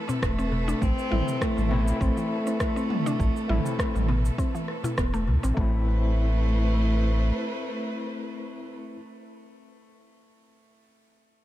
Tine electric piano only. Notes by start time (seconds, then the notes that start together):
1.11 A3 C4 E4
1.69 A3 C4
1.73 E4
3.48 A3 C4 E4
5.54 A3 C4
5.60 E4